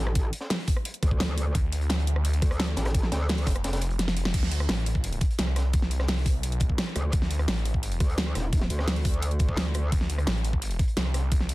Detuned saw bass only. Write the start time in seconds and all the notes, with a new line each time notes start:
1.55 D2
3.47 F1
4.34 D2
4.69 A1
5.39 C2
6.36 B1
6.64 A#1
7.13 D2
7.48 A1
9.92 D2
10.27 A1
10.97 C2